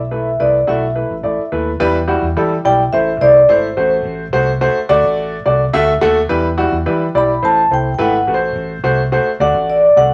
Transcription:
Already playing: B1 E5
0.11 A3 E4 B4
0.40 C2 A3 E4 B4 D5
0.67 B1 A3 E4 F#4 E5
0.95 A3 E4 B4
1.11 A1
1.23 A1 A3 E4 D5
1.52 D#2 A3 E4 B4
1.80 E2 G3 E4 B4
2.08 G3 E4 F#4
2.22 E2
2.36 E3 G3 E4 A4
2.65 B1 G3 E4 D5 G5
2.93 A1 A3 E4 C5 E5
3.21 C2 A3 E4 C5 D5
3.49 G#1 A3 E4 C5
3.77 A1 A3 F#4 C5
4.05 A1
4.33 C2 A3 F#4 C5
4.61 A3 F#4 C5
4.89 D2 A3 F#4 D5
5.04 A1
5.46 C2 A3 F#4 D5
5.73 D2 A3 F#4 E5
6.01 D#2 A3 F#4 A4
6.29 E2 G3 E4 B4
6.57 G3 E4 F#4
6.72 E2
6.86 E3 G3 E4 B4
7.15 B1 G3 E4 D5 B5
7.42 A1 A3 E4 C5 A5
7.71 C2 A3 E4 C5 G5
7.94 G5
7.98 G#1 A3 E4 B4 F#5
8.27 A1 A3 F#4 B4
8.34 C5
8.56 A1
8.83 C2 A3 F#4 C5
9.12 A3 F#4 C5
9.40 D2 A3 F#4 D5 F#5
9.55 A1
9.70 D5
9.96 C2 A3 F#4 D5 F#5

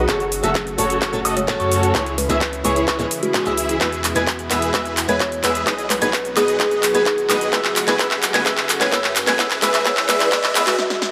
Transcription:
Already playing: F#3 F#4
0.08 F#1 C#3 F#3 A3 C#4 A4 C#5 C#6, kick, clap, closed hi-hat, shaker
0.20 closed hi-hat, shaker
0.32 open hi-hat, shaker
0.43 F#1 F#3 A3 C#4 F#4 A4 E5 E6, closed hi-hat, shaker
0.55 kick, clap, closed hi-hat, shaker
0.67 closed hi-hat, shaker
0.78 F#1 F#3 A3 C#4 F#4 A4 C#5 C#6, open hi-hat, shaker
0.90 closed hi-hat, shaker
1.02 F#1 F#4 A4 C#5 C#6, kick, clap, closed hi-hat, shaker
1.13 F#3 A3 C#4 A4, closed hi-hat, shaker
1.25 F#1 F#4 A4 D#5 D#6, open hi-hat, shaker
1.37 C#5, closed hi-hat, shaker
1.48 F#3 A3 C#4 A4, kick, clap, closed hi-hat, shaker
1.60 F#2 F#4 A4 C#5 C#6, closed hi-hat, shaker
1.72 open hi-hat, shaker
1.83 closed hi-hat, shaker
1.94 C#2 E3 G#3 C#4 E4 G#4 C#5 C#6, kick, clap, closed hi-hat, shaker
2.06 closed hi-hat, shaker
2.18 B4, open hi-hat, shaker
2.29 C#2 E3 G#3 C#4 E4 G#4 E5 E6, closed hi-hat, shaker
2.41 kick, clap, closed hi-hat, shaker
2.53 closed hi-hat, shaker
2.64 C#2 E3 G#3 C#4 E4 G#4 B4 C#5 C#6, open hi-hat, shaker
2.76 closed hi-hat, shaker
2.88 C#2 E4 G#4 C#5 C#6, kick, clap, closed hi-hat, shaker
2.99 E3 G#3 C#4 G#4, closed hi-hat, shaker
3.11 open hi-hat, shaker
3.23 F#4, closed hi-hat, shaker
3.34 E3 G#3 C#4 G#4, kick, clap, closed hi-hat, shaker
3.45 C#2 E3 G#3 C#4 E4 G#4 E5 E6, closed hi-hat, shaker
3.58 open hi-hat, shaker
3.69 closed hi-hat, shaker
3.80 E2 B2 G#3 B3 E4 G#4 B4 E5 E6, kick, clap, closed hi-hat, riser, shaker
3.92 closed hi-hat, shaker
4.04 clap, open hi-hat, shaker
4.15 E2 G#3 B3 E4 G#4 B4 G#5 G#6, closed hi-hat, shaker
4.27 kick, clap, closed hi-hat, shaker
4.39 closed hi-hat, shaker
4.50 E2 G#3 B3 E4 G#4 B4 E5 E6, clap, open hi-hat, shaker
4.62 closed hi-hat, shaker
4.73 E2 G#3 B3 E4 B4 E5 E6, kick, clap, closed hi-hat, shaker
4.86 closed hi-hat, shaker
4.97 clap, open hi-hat, shaker
5.08 E2 G#3 B3 E4 G#4 B4 C#5 G#5 G#6, closed hi-hat, shaker
5.20 kick, clap, closed hi-hat, shaker
5.32 closed hi-hat, shaker
5.43 E2 G#3 B3 E4 G#4 B4 E5 E6, clap, open hi-hat, shaker
5.55 closed hi-hat, shaker
5.66 B1 D#3 F#3 G#3 B3 D#4 F#4 G#4 B4 D#5 D#6, kick, clap, closed hi-hat, shaker
5.79 closed hi-hat, shaker
5.90 B4, clap, open hi-hat, shaker
6.01 B1 G#3 B3 D#4 G#4 B4 G#5 G#6, closed hi-hat, shaker
6.13 kick, clap, closed hi-hat, shaker
6.25 closed hi-hat, shaker
6.36 B1 G#3 B3 D#4 G#4 B4 D#5 D#6, clap, open hi-hat, shaker
6.48 closed hi-hat, shaker
6.59 B1 G#3 B3 D#4 G#4 B4 D#5 D#6, kick, clap, closed hi-hat, shaker
6.71 closed hi-hat, shaker
6.83 clap, open hi-hat, shaker
6.94 B1 G#3 B3 D#4 G#4 B4 G#5 G#6, closed hi-hat, shaker
7.06 kick, clap, closed hi-hat, shaker
7.18 closed hi-hat, shaker
7.29 B1 G#3 B3 D#4 G#4 B4 D#5 D#6, clap, open hi-hat, shaker
7.41 closed hi-hat, shaker
7.52 F#1 C#3 G#3 A3 B3 E4 G#4 B4 E5 E6, kick, clap, closed hi-hat, shaker
7.65 clap, closed hi-hat, shaker
7.76 clap, open hi-hat, shaker
7.87 F#1 G#3 B3 E4 G#4 B4 G#5 G#6, clap, closed hi-hat, shaker
7.99 F#1 G#3 B3 E4 G#4 B4 E5 E6, kick, clap, closed hi-hat, shaker
8.11 clap, closed hi-hat, shaker
8.23 clap, open hi-hat, shaker
8.34 F#1 G#3 B3 E4 G#4 B4 G#5 G#6, clap, closed hi-hat, shaker
8.45 F#1 G#3 B3 E4 G#4 B4 E5 E6, kick, clap, closed hi-hat, shaker
8.58 clap, closed hi-hat, shaker
8.69 clap, open hi-hat, shaker
8.80 F#1 G#3 B3 E4 G#4 B4 C#5 G#5 G#6, clap, closed hi-hat, shaker
8.92 F#2 G#3 B3 E4 G#4 B4 E5 E6, kick, clap, closed hi-hat, shaker
9.04 clap, closed hi-hat, shaker
9.16 clap, open hi-hat, shaker
9.27 C#2 G#3 B3 E4 G#4 B4 G#5 G#6, clap, closed hi-hat, shaker
9.38 C#2 E3 G#3 B3 E4 G#4 B4 E5 E6, kick, clap, closed hi-hat, shaker
9.51 clap, closed hi-hat, shaker
9.62 C#2 G#3 B3 E4 G#4 B4 E5 E6, clap, open hi-hat, shaker
9.74 clap, closed hi-hat, shaker
9.85 C#2 G#3 B3 E4 G#4 B4 E5 E6, kick, clap, closed hi-hat, shaker
9.97 clap, closed hi-hat, shaker
10.08 C#2 G#3 B3 E4 G#4 B4 E5 E6, clap, open hi-hat, shaker
10.20 clap, closed hi-hat, shaker
10.31 C#2 G#3 B3 E4 B4 E6, kick, clap, closed hi-hat, shaker
10.44 clap, closed hi-hat, shaker
10.55 C#2 G#3 B3 E4 G#4 B4 E5 E6, clap, open hi-hat, shaker
10.67 F#4, clap, closed hi-hat, shaker
10.79 snare
10.90 snare
11.02 snare

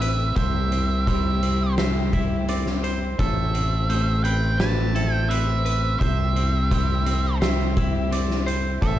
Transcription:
Already playing: A1 C3 A3 C4 E4 B4 E5
0.02 B4, closed hi-hat
0.36 C2 C3 C4 E4 G4 C5 E5, kick, closed hi-hat
0.72 C4, closed hi-hat
1.07 G3 C5, kick, closed hi-hat
1.43 C4, closed hi-hat
1.78 C5 E5, snare, closed hi-hat
2.13 E4 E5, kick, closed hi-hat
2.49 C4 D5, closed hi-hat
2.66 snare
2.84 C5, closed hi-hat
3.18 A1 A2 A3 C4 A4 E5, kick, closed hi-hat
3.54 C4, closed hi-hat
3.90 A3 C5, closed hi-hat
4.24 C4 B4 G5, closed hi-hat
4.58 B4 A5, snare, closed hi-hat
4.95 E4 A4, closed hi-hat
5.13 G5
5.29 C4 B4 E5, closed hi-hat
5.65 B4, closed hi-hat
6.00 C2 C3 C4 E4 G4 C5 E5, kick, closed hi-hat
6.36 C4, closed hi-hat
6.71 G3 C5, kick, closed hi-hat
7.06 C4, closed hi-hat
7.41 C5 E5, snare, closed hi-hat
7.77 E4 E5, kick, closed hi-hat
8.11 C4 D5, closed hi-hat
8.30 snare
8.46 C5, closed hi-hat
8.82 A1 A2 C3 A3 A4 E5, kick, closed hi-hat

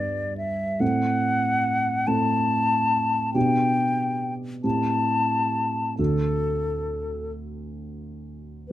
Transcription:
Already playing: G2 B3 D4 B4 D5
0.38 E5
0.80 A2 C4 A4 F#5
2.07 A2 C4 A4 A5
3.34 B2 B3 D4 G4 G5
4.64 A2 C4 E4 G4 A5
5.98 D2 D4 F#4 A4
8.69 B4

